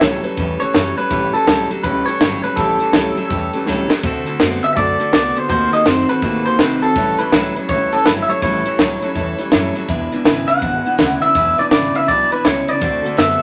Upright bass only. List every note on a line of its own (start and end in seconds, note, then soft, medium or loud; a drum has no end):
0.02 0.22 C#2 medium
0.24 muted upright bass stroke medium
0.38 0.58 E2 medium
0.61 muted upright bass stroke medium
0.75 0.95 F#2 medium
1.11 1.31 A1 medium
1.35 muted upright bass stroke medium
1.48 1.68 C#2 medium
1.72 muted upright bass stroke medium
1.84 2.04 C#2 loud
2.22 2.42 G1 loud
2.58 2.78 A1 medium
2.82 muted upright bass stroke medium
2.95 3.15 C#2 medium
3.18 muted upright bass stroke medium
3.31 3.51 E2 loud
3.68 3.88 C#2 loud
3.92 muted upright bass stroke medium
4.04 4.24 D2 loud
4.28 muted upright bass stroke medium
4.41 4.61 F#2 medium
4.77 4.97 F#2 loud
5.14 5.34 C2 medium
5.37 muted upright bass stroke medium
5.50 5.70 D#2 loud
5.86 6.06 F#2 medium
6.23 6.43 A2 loud
6.47 muted upright bass stroke medium
6.60 6.80 C3 loud
6.83 muted upright bass stroke medium
6.96 7.16 A1 medium
7.33 7.53 C#2 medium
7.57 muted upright bass stroke medium
7.69 7.90 C#2 loud
7.93 muted upright bass stroke medium
8.07 8.27 G1 medium
8.30 muted upright bass stroke medium
8.43 8.63 A1 loud
8.79 8.99 C#2 medium
9.03 muted upright bass stroke medium
9.16 9.36 E2 medium
9.53 9.73 F#2 medium
9.89 10.09 E1 loud
10.13 muted upright bass stroke medium
10.26 10.46 G#1 medium
10.50 muted upright bass stroke medium
10.62 10.82 G#1 loud
10.86 muted upright bass stroke medium
11.00 11.20 D2 medium
11.23 muted upright bass stroke medium
11.36 11.56 E1 loud
11.72 11.92 G#1 medium
12.09 12.29 B1 loud
12.32 muted upright bass stroke medium
12.45 12.65 C#2 loud
12.69 muted upright bass stroke medium
12.82 13.02 D2 loud
13.05 muted upright bass stroke medium
13.18 13.38 F#2 medium